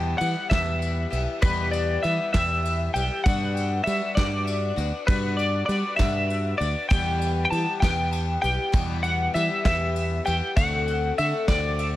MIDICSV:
0, 0, Header, 1, 5, 480
1, 0, Start_track
1, 0, Key_signature, 1, "minor"
1, 0, Tempo, 609756
1, 1121, Time_signature, 6, 3, 24, 8
1, 9416, End_track
2, 0, Start_track
2, 0, Title_t, "Clean electric guitar"
2, 0, Program_c, 0, 27
2, 0, Note_on_c, 0, 79, 96
2, 140, Note_off_c, 0, 79, 0
2, 143, Note_on_c, 0, 78, 95
2, 374, Note_off_c, 0, 78, 0
2, 392, Note_on_c, 0, 76, 101
2, 1085, Note_off_c, 0, 76, 0
2, 1120, Note_on_c, 0, 71, 103
2, 1346, Note_off_c, 0, 71, 0
2, 1349, Note_on_c, 0, 74, 93
2, 1595, Note_on_c, 0, 76, 107
2, 1603, Note_off_c, 0, 74, 0
2, 1823, Note_off_c, 0, 76, 0
2, 1833, Note_on_c, 0, 76, 99
2, 2285, Note_off_c, 0, 76, 0
2, 2314, Note_on_c, 0, 79, 98
2, 2546, Note_off_c, 0, 79, 0
2, 2549, Note_on_c, 0, 78, 109
2, 3018, Note_off_c, 0, 78, 0
2, 3021, Note_on_c, 0, 76, 97
2, 3264, Note_off_c, 0, 76, 0
2, 3268, Note_on_c, 0, 74, 106
2, 3962, Note_off_c, 0, 74, 0
2, 3990, Note_on_c, 0, 71, 92
2, 4218, Note_off_c, 0, 71, 0
2, 4226, Note_on_c, 0, 74, 88
2, 4445, Note_off_c, 0, 74, 0
2, 4454, Note_on_c, 0, 74, 92
2, 4689, Note_off_c, 0, 74, 0
2, 4695, Note_on_c, 0, 76, 92
2, 5176, Note_off_c, 0, 76, 0
2, 5179, Note_on_c, 0, 74, 84
2, 5411, Note_off_c, 0, 74, 0
2, 5422, Note_on_c, 0, 79, 98
2, 5856, Note_off_c, 0, 79, 0
2, 5865, Note_on_c, 0, 79, 82
2, 5905, Note_off_c, 0, 79, 0
2, 5908, Note_on_c, 0, 81, 98
2, 6139, Note_off_c, 0, 81, 0
2, 6142, Note_on_c, 0, 79, 104
2, 6618, Note_off_c, 0, 79, 0
2, 6627, Note_on_c, 0, 79, 105
2, 7104, Note_off_c, 0, 79, 0
2, 7107, Note_on_c, 0, 78, 85
2, 7352, Note_off_c, 0, 78, 0
2, 7355, Note_on_c, 0, 76, 90
2, 7579, Note_off_c, 0, 76, 0
2, 7602, Note_on_c, 0, 76, 99
2, 8070, Note_off_c, 0, 76, 0
2, 8074, Note_on_c, 0, 79, 88
2, 8298, Note_off_c, 0, 79, 0
2, 8317, Note_on_c, 0, 78, 97
2, 8766, Note_off_c, 0, 78, 0
2, 8803, Note_on_c, 0, 76, 94
2, 9035, Note_off_c, 0, 76, 0
2, 9038, Note_on_c, 0, 74, 90
2, 9416, Note_off_c, 0, 74, 0
2, 9416, End_track
3, 0, Start_track
3, 0, Title_t, "Twelve-string acoustic guitar"
3, 0, Program_c, 1, 25
3, 0, Note_on_c, 1, 40, 82
3, 0, Note_on_c, 1, 47, 83
3, 0, Note_on_c, 1, 52, 82
3, 0, Note_on_c, 1, 55, 88
3, 0, Note_on_c, 1, 59, 83
3, 0, Note_on_c, 1, 67, 103
3, 133, Note_off_c, 1, 52, 0
3, 142, Note_on_c, 1, 52, 66
3, 150, Note_off_c, 1, 55, 0
3, 153, Note_on_c, 1, 55, 64
3, 155, Note_off_c, 1, 40, 0
3, 158, Note_off_c, 1, 47, 0
3, 159, Note_off_c, 1, 59, 0
3, 162, Note_on_c, 1, 59, 69
3, 165, Note_off_c, 1, 67, 0
3, 168, Note_on_c, 1, 67, 74
3, 382, Note_off_c, 1, 67, 0
3, 386, Note_off_c, 1, 59, 0
3, 391, Note_off_c, 1, 52, 0
3, 391, Note_off_c, 1, 55, 0
3, 392, Note_on_c, 1, 67, 64
3, 395, Note_on_c, 1, 59, 60
3, 401, Note_on_c, 1, 52, 56
3, 401, Note_on_c, 1, 55, 62
3, 409, Note_on_c, 1, 47, 60
3, 410, Note_on_c, 1, 40, 50
3, 866, Note_off_c, 1, 67, 0
3, 869, Note_on_c, 1, 67, 59
3, 877, Note_off_c, 1, 59, 0
3, 880, Note_on_c, 1, 59, 63
3, 881, Note_off_c, 1, 52, 0
3, 885, Note_off_c, 1, 40, 0
3, 885, Note_off_c, 1, 47, 0
3, 885, Note_off_c, 1, 55, 0
3, 888, Note_on_c, 1, 55, 53
3, 896, Note_on_c, 1, 52, 49
3, 1115, Note_off_c, 1, 52, 0
3, 1115, Note_off_c, 1, 67, 0
3, 1115, Note_on_c, 1, 40, 78
3, 1118, Note_off_c, 1, 55, 0
3, 1120, Note_on_c, 1, 47, 92
3, 1121, Note_off_c, 1, 59, 0
3, 1124, Note_on_c, 1, 52, 96
3, 1127, Note_on_c, 1, 55, 90
3, 1130, Note_on_c, 1, 59, 102
3, 1130, Note_on_c, 1, 67, 106
3, 1589, Note_off_c, 1, 52, 0
3, 1598, Note_off_c, 1, 40, 0
3, 1598, Note_on_c, 1, 52, 67
3, 1601, Note_off_c, 1, 47, 0
3, 1607, Note_off_c, 1, 55, 0
3, 1611, Note_on_c, 1, 55, 66
3, 1613, Note_off_c, 1, 59, 0
3, 1616, Note_on_c, 1, 59, 76
3, 1620, Note_off_c, 1, 67, 0
3, 1623, Note_on_c, 1, 67, 75
3, 1830, Note_off_c, 1, 67, 0
3, 1835, Note_off_c, 1, 59, 0
3, 1836, Note_off_c, 1, 55, 0
3, 1839, Note_on_c, 1, 67, 67
3, 1840, Note_off_c, 1, 52, 0
3, 1845, Note_on_c, 1, 59, 64
3, 1846, Note_on_c, 1, 55, 65
3, 1851, Note_on_c, 1, 52, 59
3, 1854, Note_on_c, 1, 47, 62
3, 1856, Note_on_c, 1, 40, 54
3, 2313, Note_off_c, 1, 67, 0
3, 2316, Note_on_c, 1, 67, 65
3, 2324, Note_off_c, 1, 59, 0
3, 2326, Note_off_c, 1, 52, 0
3, 2327, Note_off_c, 1, 47, 0
3, 2327, Note_on_c, 1, 59, 56
3, 2328, Note_off_c, 1, 40, 0
3, 2330, Note_off_c, 1, 55, 0
3, 2333, Note_on_c, 1, 55, 55
3, 2339, Note_on_c, 1, 52, 54
3, 2553, Note_off_c, 1, 55, 0
3, 2558, Note_off_c, 1, 59, 0
3, 2558, Note_off_c, 1, 67, 0
3, 2560, Note_off_c, 1, 52, 0
3, 2563, Note_on_c, 1, 55, 79
3, 2568, Note_on_c, 1, 59, 93
3, 2568, Note_on_c, 1, 62, 89
3, 2575, Note_on_c, 1, 66, 97
3, 3035, Note_off_c, 1, 55, 0
3, 3039, Note_on_c, 1, 55, 72
3, 3043, Note_off_c, 1, 59, 0
3, 3044, Note_off_c, 1, 62, 0
3, 3046, Note_on_c, 1, 59, 75
3, 3048, Note_off_c, 1, 66, 0
3, 3057, Note_on_c, 1, 62, 69
3, 3062, Note_on_c, 1, 66, 80
3, 3273, Note_off_c, 1, 66, 0
3, 3279, Note_off_c, 1, 55, 0
3, 3283, Note_off_c, 1, 59, 0
3, 3283, Note_off_c, 1, 62, 0
3, 3283, Note_on_c, 1, 66, 71
3, 3292, Note_on_c, 1, 62, 74
3, 3296, Note_on_c, 1, 59, 62
3, 3302, Note_on_c, 1, 55, 61
3, 3740, Note_off_c, 1, 66, 0
3, 3749, Note_on_c, 1, 66, 61
3, 3756, Note_off_c, 1, 62, 0
3, 3765, Note_on_c, 1, 62, 53
3, 3773, Note_off_c, 1, 55, 0
3, 3773, Note_off_c, 1, 59, 0
3, 3777, Note_on_c, 1, 59, 54
3, 3994, Note_off_c, 1, 66, 0
3, 3995, Note_off_c, 1, 59, 0
3, 3999, Note_on_c, 1, 55, 87
3, 4002, Note_off_c, 1, 62, 0
3, 4004, Note_on_c, 1, 59, 89
3, 4011, Note_on_c, 1, 62, 91
3, 4014, Note_on_c, 1, 66, 105
3, 4471, Note_off_c, 1, 55, 0
3, 4474, Note_on_c, 1, 55, 64
3, 4477, Note_off_c, 1, 62, 0
3, 4479, Note_off_c, 1, 59, 0
3, 4482, Note_on_c, 1, 59, 61
3, 4487, Note_off_c, 1, 66, 0
3, 4487, Note_on_c, 1, 62, 71
3, 4496, Note_on_c, 1, 66, 77
3, 4693, Note_off_c, 1, 66, 0
3, 4703, Note_off_c, 1, 62, 0
3, 4703, Note_on_c, 1, 66, 75
3, 4708, Note_off_c, 1, 59, 0
3, 4709, Note_off_c, 1, 55, 0
3, 4712, Note_on_c, 1, 62, 59
3, 4717, Note_on_c, 1, 59, 61
3, 4719, Note_on_c, 1, 55, 57
3, 5178, Note_off_c, 1, 66, 0
3, 5188, Note_on_c, 1, 66, 63
3, 5193, Note_off_c, 1, 62, 0
3, 5202, Note_on_c, 1, 62, 50
3, 5211, Note_off_c, 1, 55, 0
3, 5211, Note_off_c, 1, 59, 0
3, 5214, Note_on_c, 1, 59, 45
3, 5432, Note_on_c, 1, 40, 85
3, 5433, Note_off_c, 1, 66, 0
3, 5435, Note_off_c, 1, 59, 0
3, 5436, Note_on_c, 1, 47, 90
3, 5436, Note_on_c, 1, 52, 92
3, 5440, Note_off_c, 1, 62, 0
3, 5441, Note_on_c, 1, 55, 86
3, 5445, Note_on_c, 1, 59, 85
3, 5447, Note_on_c, 1, 67, 97
3, 5903, Note_off_c, 1, 52, 0
3, 5913, Note_on_c, 1, 52, 67
3, 5914, Note_off_c, 1, 55, 0
3, 5915, Note_off_c, 1, 40, 0
3, 5917, Note_off_c, 1, 47, 0
3, 5921, Note_off_c, 1, 59, 0
3, 5923, Note_off_c, 1, 67, 0
3, 5924, Note_on_c, 1, 55, 62
3, 5932, Note_on_c, 1, 59, 67
3, 5937, Note_on_c, 1, 67, 66
3, 6150, Note_off_c, 1, 67, 0
3, 6153, Note_off_c, 1, 59, 0
3, 6155, Note_off_c, 1, 52, 0
3, 6157, Note_off_c, 1, 55, 0
3, 6159, Note_on_c, 1, 67, 65
3, 6162, Note_on_c, 1, 59, 72
3, 6167, Note_on_c, 1, 55, 63
3, 6168, Note_on_c, 1, 52, 66
3, 6172, Note_on_c, 1, 40, 55
3, 6173, Note_on_c, 1, 47, 62
3, 6621, Note_off_c, 1, 67, 0
3, 6631, Note_on_c, 1, 67, 61
3, 6632, Note_off_c, 1, 59, 0
3, 6640, Note_off_c, 1, 55, 0
3, 6642, Note_on_c, 1, 59, 56
3, 6643, Note_off_c, 1, 52, 0
3, 6645, Note_off_c, 1, 40, 0
3, 6645, Note_off_c, 1, 47, 0
3, 6649, Note_on_c, 1, 55, 56
3, 6656, Note_on_c, 1, 52, 51
3, 6863, Note_off_c, 1, 52, 0
3, 6866, Note_on_c, 1, 40, 85
3, 6868, Note_off_c, 1, 55, 0
3, 6872, Note_on_c, 1, 47, 81
3, 6873, Note_off_c, 1, 59, 0
3, 6873, Note_on_c, 1, 52, 90
3, 6874, Note_off_c, 1, 67, 0
3, 6878, Note_on_c, 1, 55, 99
3, 6882, Note_on_c, 1, 59, 81
3, 6885, Note_on_c, 1, 67, 98
3, 7341, Note_off_c, 1, 52, 0
3, 7348, Note_off_c, 1, 55, 0
3, 7350, Note_on_c, 1, 52, 70
3, 7351, Note_off_c, 1, 40, 0
3, 7354, Note_off_c, 1, 47, 0
3, 7358, Note_on_c, 1, 55, 76
3, 7360, Note_off_c, 1, 59, 0
3, 7361, Note_off_c, 1, 67, 0
3, 7367, Note_on_c, 1, 59, 69
3, 7373, Note_on_c, 1, 67, 73
3, 7584, Note_off_c, 1, 67, 0
3, 7587, Note_off_c, 1, 59, 0
3, 7593, Note_off_c, 1, 52, 0
3, 7593, Note_off_c, 1, 55, 0
3, 7593, Note_on_c, 1, 67, 67
3, 7597, Note_on_c, 1, 59, 75
3, 7602, Note_on_c, 1, 55, 70
3, 7606, Note_on_c, 1, 52, 69
3, 7607, Note_on_c, 1, 47, 62
3, 7608, Note_on_c, 1, 40, 58
3, 8059, Note_off_c, 1, 67, 0
3, 8068, Note_on_c, 1, 67, 59
3, 8069, Note_off_c, 1, 59, 0
3, 8075, Note_off_c, 1, 55, 0
3, 8078, Note_on_c, 1, 59, 57
3, 8081, Note_off_c, 1, 52, 0
3, 8082, Note_off_c, 1, 40, 0
3, 8082, Note_off_c, 1, 47, 0
3, 8085, Note_on_c, 1, 55, 53
3, 8092, Note_on_c, 1, 52, 51
3, 8313, Note_off_c, 1, 67, 0
3, 8314, Note_off_c, 1, 52, 0
3, 8315, Note_off_c, 1, 55, 0
3, 8317, Note_on_c, 1, 50, 85
3, 8318, Note_off_c, 1, 59, 0
3, 8318, Note_on_c, 1, 57, 85
3, 8325, Note_on_c, 1, 60, 101
3, 8332, Note_on_c, 1, 66, 97
3, 8792, Note_off_c, 1, 50, 0
3, 8798, Note_off_c, 1, 57, 0
3, 8801, Note_off_c, 1, 60, 0
3, 8801, Note_on_c, 1, 50, 63
3, 8805, Note_off_c, 1, 66, 0
3, 8809, Note_on_c, 1, 57, 76
3, 8814, Note_on_c, 1, 60, 72
3, 8828, Note_on_c, 1, 66, 75
3, 9036, Note_off_c, 1, 66, 0
3, 9040, Note_off_c, 1, 50, 0
3, 9041, Note_off_c, 1, 60, 0
3, 9043, Note_off_c, 1, 57, 0
3, 9045, Note_on_c, 1, 66, 73
3, 9051, Note_on_c, 1, 60, 75
3, 9054, Note_on_c, 1, 57, 59
3, 9061, Note_on_c, 1, 50, 59
3, 9416, Note_off_c, 1, 50, 0
3, 9416, Note_off_c, 1, 57, 0
3, 9416, Note_off_c, 1, 60, 0
3, 9416, Note_off_c, 1, 66, 0
3, 9416, End_track
4, 0, Start_track
4, 0, Title_t, "Fingered electric bass"
4, 0, Program_c, 2, 33
4, 0, Note_on_c, 2, 40, 92
4, 104, Note_off_c, 2, 40, 0
4, 164, Note_on_c, 2, 52, 92
4, 268, Note_off_c, 2, 52, 0
4, 401, Note_on_c, 2, 40, 96
4, 824, Note_off_c, 2, 40, 0
4, 884, Note_on_c, 2, 35, 97
4, 988, Note_off_c, 2, 35, 0
4, 1122, Note_on_c, 2, 40, 102
4, 1545, Note_off_c, 2, 40, 0
4, 1608, Note_on_c, 2, 52, 87
4, 1711, Note_off_c, 2, 52, 0
4, 1842, Note_on_c, 2, 40, 94
4, 2265, Note_off_c, 2, 40, 0
4, 2323, Note_on_c, 2, 35, 91
4, 2428, Note_off_c, 2, 35, 0
4, 2567, Note_on_c, 2, 43, 100
4, 2987, Note_off_c, 2, 43, 0
4, 3045, Note_on_c, 2, 55, 98
4, 3149, Note_off_c, 2, 55, 0
4, 3284, Note_on_c, 2, 43, 102
4, 3705, Note_off_c, 2, 43, 0
4, 3756, Note_on_c, 2, 38, 103
4, 3864, Note_off_c, 2, 38, 0
4, 4000, Note_on_c, 2, 43, 97
4, 4423, Note_off_c, 2, 43, 0
4, 4475, Note_on_c, 2, 55, 91
4, 4583, Note_off_c, 2, 55, 0
4, 4717, Note_on_c, 2, 43, 100
4, 5141, Note_off_c, 2, 43, 0
4, 5199, Note_on_c, 2, 38, 97
4, 5304, Note_off_c, 2, 38, 0
4, 5438, Note_on_c, 2, 40, 103
4, 5861, Note_off_c, 2, 40, 0
4, 5916, Note_on_c, 2, 52, 93
4, 6023, Note_off_c, 2, 52, 0
4, 6158, Note_on_c, 2, 40, 102
4, 6581, Note_off_c, 2, 40, 0
4, 6640, Note_on_c, 2, 35, 89
4, 6744, Note_off_c, 2, 35, 0
4, 6876, Note_on_c, 2, 40, 90
4, 7300, Note_off_c, 2, 40, 0
4, 7359, Note_on_c, 2, 52, 96
4, 7464, Note_off_c, 2, 52, 0
4, 7598, Note_on_c, 2, 40, 100
4, 8021, Note_off_c, 2, 40, 0
4, 8088, Note_on_c, 2, 40, 100
4, 8189, Note_off_c, 2, 40, 0
4, 8323, Note_on_c, 2, 38, 108
4, 8744, Note_off_c, 2, 38, 0
4, 8806, Note_on_c, 2, 50, 86
4, 8908, Note_off_c, 2, 50, 0
4, 9040, Note_on_c, 2, 38, 103
4, 9416, Note_off_c, 2, 38, 0
4, 9416, End_track
5, 0, Start_track
5, 0, Title_t, "Drums"
5, 161, Note_on_c, 9, 51, 61
5, 240, Note_off_c, 9, 51, 0
5, 402, Note_on_c, 9, 36, 84
5, 403, Note_on_c, 9, 38, 116
5, 403, Note_on_c, 9, 51, 82
5, 480, Note_off_c, 9, 36, 0
5, 482, Note_off_c, 9, 38, 0
5, 482, Note_off_c, 9, 51, 0
5, 642, Note_on_c, 9, 51, 61
5, 721, Note_off_c, 9, 51, 0
5, 886, Note_on_c, 9, 51, 64
5, 964, Note_off_c, 9, 51, 0
5, 1117, Note_on_c, 9, 51, 96
5, 1122, Note_on_c, 9, 36, 123
5, 1196, Note_off_c, 9, 51, 0
5, 1201, Note_off_c, 9, 36, 0
5, 1360, Note_on_c, 9, 51, 59
5, 1439, Note_off_c, 9, 51, 0
5, 1601, Note_on_c, 9, 51, 66
5, 1680, Note_off_c, 9, 51, 0
5, 1840, Note_on_c, 9, 38, 120
5, 1840, Note_on_c, 9, 51, 89
5, 1844, Note_on_c, 9, 36, 77
5, 1919, Note_off_c, 9, 38, 0
5, 1919, Note_off_c, 9, 51, 0
5, 1923, Note_off_c, 9, 36, 0
5, 2087, Note_on_c, 9, 51, 63
5, 2166, Note_off_c, 9, 51, 0
5, 2326, Note_on_c, 9, 51, 70
5, 2404, Note_off_c, 9, 51, 0
5, 2564, Note_on_c, 9, 51, 94
5, 2565, Note_on_c, 9, 36, 122
5, 2643, Note_off_c, 9, 51, 0
5, 2644, Note_off_c, 9, 36, 0
5, 2807, Note_on_c, 9, 51, 63
5, 2886, Note_off_c, 9, 51, 0
5, 3046, Note_on_c, 9, 51, 66
5, 3125, Note_off_c, 9, 51, 0
5, 3283, Note_on_c, 9, 36, 90
5, 3283, Note_on_c, 9, 38, 120
5, 3283, Note_on_c, 9, 51, 87
5, 3361, Note_off_c, 9, 38, 0
5, 3361, Note_off_c, 9, 51, 0
5, 3362, Note_off_c, 9, 36, 0
5, 3518, Note_on_c, 9, 51, 63
5, 3597, Note_off_c, 9, 51, 0
5, 3760, Note_on_c, 9, 51, 63
5, 3838, Note_off_c, 9, 51, 0
5, 3998, Note_on_c, 9, 51, 90
5, 4000, Note_on_c, 9, 36, 122
5, 4077, Note_off_c, 9, 51, 0
5, 4079, Note_off_c, 9, 36, 0
5, 4240, Note_on_c, 9, 51, 59
5, 4319, Note_off_c, 9, 51, 0
5, 4478, Note_on_c, 9, 51, 65
5, 4556, Note_off_c, 9, 51, 0
5, 4715, Note_on_c, 9, 38, 120
5, 4715, Note_on_c, 9, 51, 89
5, 4718, Note_on_c, 9, 36, 75
5, 4794, Note_off_c, 9, 38, 0
5, 4794, Note_off_c, 9, 51, 0
5, 4797, Note_off_c, 9, 36, 0
5, 4959, Note_on_c, 9, 51, 58
5, 5038, Note_off_c, 9, 51, 0
5, 5204, Note_on_c, 9, 51, 61
5, 5282, Note_off_c, 9, 51, 0
5, 5439, Note_on_c, 9, 36, 124
5, 5441, Note_on_c, 9, 51, 96
5, 5518, Note_off_c, 9, 36, 0
5, 5520, Note_off_c, 9, 51, 0
5, 5679, Note_on_c, 9, 51, 63
5, 5758, Note_off_c, 9, 51, 0
5, 5921, Note_on_c, 9, 51, 73
5, 6000, Note_off_c, 9, 51, 0
5, 6158, Note_on_c, 9, 36, 80
5, 6160, Note_on_c, 9, 38, 116
5, 6160, Note_on_c, 9, 51, 98
5, 6237, Note_off_c, 9, 36, 0
5, 6239, Note_off_c, 9, 38, 0
5, 6239, Note_off_c, 9, 51, 0
5, 6395, Note_on_c, 9, 51, 69
5, 6474, Note_off_c, 9, 51, 0
5, 6641, Note_on_c, 9, 51, 69
5, 6719, Note_off_c, 9, 51, 0
5, 6875, Note_on_c, 9, 51, 96
5, 6877, Note_on_c, 9, 36, 121
5, 6954, Note_off_c, 9, 51, 0
5, 6956, Note_off_c, 9, 36, 0
5, 7111, Note_on_c, 9, 51, 64
5, 7190, Note_off_c, 9, 51, 0
5, 7362, Note_on_c, 9, 51, 65
5, 7441, Note_off_c, 9, 51, 0
5, 7596, Note_on_c, 9, 38, 125
5, 7596, Note_on_c, 9, 51, 84
5, 7597, Note_on_c, 9, 36, 86
5, 7675, Note_off_c, 9, 38, 0
5, 7675, Note_off_c, 9, 51, 0
5, 7676, Note_off_c, 9, 36, 0
5, 7838, Note_on_c, 9, 51, 63
5, 7917, Note_off_c, 9, 51, 0
5, 8078, Note_on_c, 9, 51, 63
5, 8157, Note_off_c, 9, 51, 0
5, 8318, Note_on_c, 9, 36, 122
5, 8319, Note_on_c, 9, 51, 91
5, 8397, Note_off_c, 9, 36, 0
5, 8398, Note_off_c, 9, 51, 0
5, 8561, Note_on_c, 9, 51, 58
5, 8639, Note_off_c, 9, 51, 0
5, 8801, Note_on_c, 9, 51, 62
5, 8879, Note_off_c, 9, 51, 0
5, 9037, Note_on_c, 9, 38, 111
5, 9037, Note_on_c, 9, 51, 82
5, 9038, Note_on_c, 9, 36, 83
5, 9116, Note_off_c, 9, 38, 0
5, 9116, Note_off_c, 9, 51, 0
5, 9117, Note_off_c, 9, 36, 0
5, 9278, Note_on_c, 9, 51, 62
5, 9357, Note_off_c, 9, 51, 0
5, 9416, End_track
0, 0, End_of_file